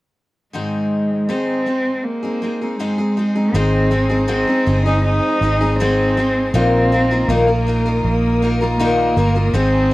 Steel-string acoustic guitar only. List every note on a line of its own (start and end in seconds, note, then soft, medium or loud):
0.53 1.27 G#2 medium
0.53 1.28 D#3 medium
0.53 1.29 G#3 medium
0.53 1.29 C4 medium
0.53 1.29 D#4 medium
0.53 1.30 G#4 medium
1.29 1.66 G#2 medium
1.29 1.67 D#3 medium
1.29 1.65 G#3 medium
1.29 1.66 C4 medium
1.29 1.66 D#4 medium
1.29 1.67 G#4 medium
1.66 2.23 G#3 soft
1.66 2.23 C4 medium
1.66 2.22 D#4 soft
1.66 2.21 G#4 soft
2.22 2.40 G#3 soft
2.22 2.42 C4 soft
2.22 2.42 D#4 soft
2.22 2.42 G#4 soft
2.42 2.60 G#3 soft
2.42 2.61 C4 soft
2.42 2.61 D#4 soft
2.42 2.60 G#4 soft
2.61 2.79 G#3 soft
2.61 2.79 C4 soft
2.61 2.79 D#4 soft
2.61 2.80 G#4 soft
2.79 2.98 G#2 medium
2.79 2.98 D#3 medium
2.79 2.98 G#3 medium
2.79 2.99 C4 medium
2.79 2.98 D#4 medium
2.79 2.97 G#4 medium
2.98 3.16 G#3 soft
2.98 3.16 C4 soft
2.98 3.17 D#4 soft
2.98 3.17 G#4 soft
3.17 3.36 G#3 medium
3.17 3.35 C4 medium
3.17 3.34 D#4 medium
3.17 3.34 G#4 medium
3.35 3.53 G#3 soft
3.35 3.54 C4 soft
3.35 3.54 D#4 soft
3.35 3.54 G#4 soft
3.54 3.92 G#2 medium
3.54 3.92 D#3 medium
3.54 3.89 G#3 medium
3.54 3.90 C4 medium
3.54 3.91 D#4 medium
3.54 3.92 G#4 medium
3.91 4.10 G#3 medium
3.91 4.10 C4 medium
3.91 4.09 D#4 medium
3.91 4.08 G#4 medium
4.09 4.27 G#3 soft
4.09 4.27 C4 soft
4.09 4.28 D#4 medium
4.09 4.28 G#4 medium
4.28 4.47 G#2 medium
4.28 4.47 D#3 medium
4.28 4.48 G#3 medium
4.28 4.48 C4 medium
4.28 4.47 D#4 medium
4.28 4.46 G#4 medium
4.47 4.65 G#3 soft
4.47 4.66 C4 soft
4.47 4.67 D#4 medium
4.47 4.67 G#4 soft
4.67 4.86 G#3 medium
4.67 4.86 C4 medium
4.67 4.86 D#4 medium
4.67 4.85 G#4 medium
4.86 5.41 G#3 soft
4.86 5.42 C4 soft
4.86 5.43 D#4 medium
4.86 5.42 G#4 medium
5.42 5.61 G#3 medium
5.42 5.61 C4 medium
5.42 5.61 D#4 medium
5.42 5.59 G#4 medium
5.61 5.79 G#3 soft
5.61 5.80 C4 soft
5.61 5.80 D#4 medium
5.61 5.79 G#4 medium
5.80 6.17 G#2 medium
5.80 6.17 D#3 medium
5.80 6.16 G#3 medium
5.80 6.17 C4 medium
5.80 6.18 D#4 medium
5.80 6.18 G#4 medium
6.17 6.54 G#3 medium
6.17 6.54 C4 medium
6.17 6.54 D#4 medium
6.17 6.55 G#4 medium
6.54 6.92 A#2 medium
6.54 6.92 D#3 medium
6.54 6.91 A#3 medium
6.54 6.91 D#4 medium
6.54 6.92 F4 medium
6.54 6.92 A#4 medium
6.92 7.11 A#3 medium
6.92 7.11 D#4 medium
6.92 7.10 F4 medium
6.92 7.10 A#4 medium
7.11 7.29 A#3 soft
7.11 7.29 D#4 soft
7.11 7.29 F4 soft
7.11 7.30 A#4 medium
7.29 7.48 A#2 medium
7.29 7.48 D#3 medium
7.29 7.48 A#3 medium
7.29 7.48 D#4 medium
7.29 7.47 F4 medium
7.29 7.46 A#4 medium
7.47 7.65 A#3 soft
7.47 7.67 D#4 soft
7.47 7.67 F4 soft
7.47 7.66 A#4 soft
7.67 7.86 A#3 medium
7.67 7.86 D#4 medium
7.67 7.85 F4 medium
7.67 7.84 A#4 medium
7.85 8.40 A#3 soft
7.85 8.41 D#4 soft
7.85 8.42 F4 soft
7.85 8.42 A#4 medium
8.42 8.61 A#3 soft
8.42 8.61 D#4 medium
8.42 8.60 F4 medium
8.42 8.59 A#4 medium
8.60 8.79 A#3 soft
8.60 8.79 D#4 soft
8.60 8.80 F4 medium
8.60 8.79 A#4 medium
8.79 9.17 A#2 medium
8.79 9.17 D#3 medium
8.79 9.16 A#3 medium
8.79 9.17 D#4 medium
8.79 9.17 F4 medium
8.79 9.18 A#4 medium
9.17 9.36 A#3 medium
9.17 9.36 D#4 medium
9.17 9.35 F4 medium
9.17 9.34 A#4 medium
9.35 9.54 A#3 soft
9.35 9.54 D#4 soft
9.35 9.55 F4 soft
9.35 9.54 A#4 medium
9.54 9.92 G#2 medium
9.54 9.92 D#3 medium
9.54 9.90 G#3 medium
9.54 9.91 C4 medium
9.54 9.92 D#4 medium
9.54 9.92 G#4 medium